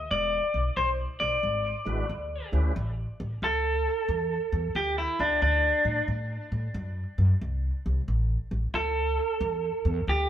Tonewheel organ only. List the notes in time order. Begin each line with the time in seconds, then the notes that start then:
1.85 G#3 D4 E4 F#4 B4
2.52 A3 C#4 E4 G4 B4